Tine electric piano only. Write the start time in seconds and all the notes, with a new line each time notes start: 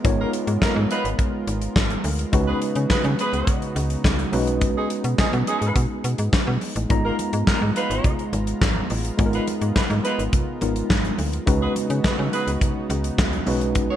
0.04 G#3 B3 D#4 F4 C#5
2.32 G#3 C#4 D#4 F#4 B4
4.32 G#3 C#4 D#4 F#4 B4
6.89 G#3 B3 D#4 F4 A#5
9.18 G#3 B3 D#4 F4 G#4
9.26 A#4
10.61 G#3 B3 D#4 F4 A#4
11.46 G#3 C#4 D#4 F#4 B4
13.46 G#3 C#4 D#4 F#4 B4